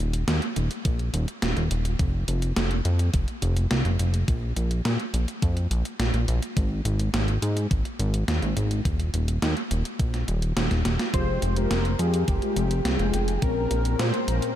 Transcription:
0.00 D#1
0.13 closed hi-hat
0.28 D#2, snare, closed hi-hat
0.42 closed hi-hat
0.56 D#1, closed hi-hat
0.71 closed hi-hat
0.85 A#1, kick, closed hi-hat
0.99 closed hi-hat
1.14 D#1, closed hi-hat
1.28 closed hi-hat
1.42 D#1, snare, closed hi-hat
1.57 D#1, closed hi-hat
1.71 D#1, closed hi-hat
1.85 closed hi-hat
1.99 F1, kick, closed hi-hat
2.28 F1, closed hi-hat
2.42 closed hi-hat
2.56 F1, snare, closed hi-hat
2.71 closed hi-hat
2.85 F2, closed hi-hat
2.99 closed hi-hat
3.14 F1, kick, closed hi-hat
3.28 closed hi-hat
3.42 F1, closed hi-hat
3.56 closed hi-hat
3.71 C2, snare, closed hi-hat
3.85 F1, closed hi-hat
3.99 F1, closed hi-hat
4.14 closed hi-hat
4.28 A#1, kick, closed hi-hat
4.56 A#1, closed hi-hat
4.71 closed hi-hat
4.85 A#2, snare, closed hi-hat
5.00 closed hi-hat
5.14 A#1, closed hi-hat
5.28 closed hi-hat
5.42 F2, kick, closed hi-hat
5.57 closed hi-hat
5.71 A#1, closed hi-hat
5.85 closed hi-hat
5.99 A#1, snare, closed hi-hat
6.14 A#1, closed hi-hat
6.28 A#1, closed hi-hat
6.42 closed hi-hat
6.57 G#1, kick, closed hi-hat
6.85 G#1, closed hi-hat
6.99 closed hi-hat
7.14 G#1, snare, closed hi-hat
7.28 closed hi-hat
7.42 G#2, closed hi-hat
7.57 closed hi-hat
7.71 G#1, kick, closed hi-hat
7.85 closed hi-hat
7.99 G#1, closed hi-hat
8.14 closed hi-hat
8.28 D#2, snare, closed hi-hat
8.42 G#1, closed hi-hat
8.57 G#1, closed hi-hat
8.71 closed hi-hat
8.85 D#1, kick, closed hi-hat
9.00 closed hi-hat
9.14 D#1, closed hi-hat
9.28 closed hi-hat
9.42 D#2, snare, closed hi-hat
9.57 closed hi-hat
9.71 D#1, closed hi-hat
9.85 closed hi-hat
9.99 A#1, kick, closed hi-hat
10.14 snare, closed hi-hat
10.28 D#1, closed hi-hat
10.42 closed hi-hat
10.57 D#1, snare, closed hi-hat
10.71 D#1, snare, closed hi-hat
10.85 D#1, snare, closed hi-hat
10.99 snare, closed hi-hat
11.14 F1 G#3 F4 G4 C5, kick, closed hi-hat
11.42 F1, closed hi-hat
11.50 C5
11.56 G#3 F4 G4 A#4, closed hi-hat
11.71 F1, snare, closed hi-hat
11.85 closed hi-hat
11.99 F2 G#3 F4 G4 G#4, closed hi-hat
12.14 closed hi-hat
12.28 F1 G4, kick, closed hi-hat
12.42 G#3 F4 G4, closed hi-hat
12.56 F1, closed hi-hat
12.71 closed hi-hat
12.85 C2 G#4, snare, closed hi-hat
12.99 F1 G#3 F4 G5, closed hi-hat
13.14 F1, closed hi-hat
13.28 closed hi-hat
13.42 A#1 A#2 C4 C#4 A#4, kick, closed hi-hat
13.71 A#1, closed hi-hat
13.85 A#2 C4 C#4 A#4, closed hi-hat
13.99 A#2 C5, snare, closed hi-hat
14.14 closed hi-hat
14.28 A#1 A#2 C4 C#4 A#4, closed hi-hat
14.42 closed hi-hat

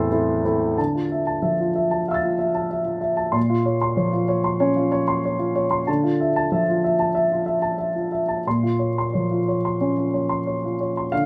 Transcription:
Already playing: E2 A2 C4 E4 A4 C5 C6 E6 A6
0.11 C4 E4 A4
0.45 C4 E4 A4
0.77 D3 A5
0.95 F4
1.12 E5
1.27 A5
1.42 F3 E5
1.60 F4
1.76 E5
1.91 A5
2.08 E5 F5 E6
2.14 A6
2.23 F4
2.39 E5
2.55 A5
2.71 E5
2.85 F4
3.01 E5
3.17 A5
3.32 A#2 C6
3.50 F4
3.66 C#5
3.81 C6
3.97 F3 C#5
4.13 F4
4.28 C#5
4.44 C6
4.60 C#4 C#5
4.76 F4
4.92 C#5
5.08 C6
5.25 C#5
5.39 F4
5.55 C#5
5.71 C6
5.87 D3 A5
6.03 F4
6.20 E5
6.36 A5
6.52 F3 E5
6.68 F4
6.84 E5
6.99 A5
7.15 E5
7.32 F4
7.46 E5
7.62 A5
7.78 E5
7.95 F4
8.12 E5
8.28 A5
8.47 A#2 C6
8.63 F4
8.79 C#5
8.98 C6
9.14 F3 C#5
9.31 F4
9.48 C#5
9.65 C6
9.81 C#4 C#5
9.97 F4
10.14 C#5
10.29 C6
10.47 C#5
10.65 F4
10.81 C#5
10.97 C6
11.12 D3 F5

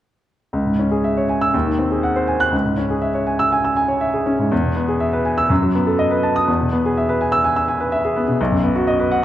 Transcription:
0.53 C#2
0.65 G#2
0.79 C#4
0.91 G#4
1.04 E5
1.17 C#5
1.29 G#5
1.41 E6
1.54 D#2
1.66 D#3
1.79 C4
1.91 G#4
2.03 F#5
2.16 C5
2.28 G#5
2.40 F#6
2.52 C#2
2.65 G#2
2.78 C#4
2.90 G#4
3.02 E5
3.14 C#5
3.27 G#5
3.39 E6
3.52 G#5
3.65 E6
3.76 G#5
3.88 C#5
4.01 E5
4.14 G#4
4.26 C#4
4.39 G#2
4.52 E2
4.63 B2
4.75 B3
4.88 G#4
5.00 E5
5.13 B4
5.25 G#5
5.38 E6
5.50 F#2
5.62 F#3
5.75 B3
5.87 A4
5.99 D#5
6.11 B4
6.23 A5
6.36 D#6
6.48 E2
6.61 B2
6.73 B3
6.86 G#4
6.97 E5
7.09 B4
7.21 G#5
7.32 E6
7.44 G#5
7.56 E6
7.68 G#5
7.80 B4
7.92 E5
8.05 G#4
8.16 B3
8.28 B2
8.41 B1
8.52 F#2
8.64 B3
8.75 F#4
8.87 D#5
9.00 B4
9.11 F#5

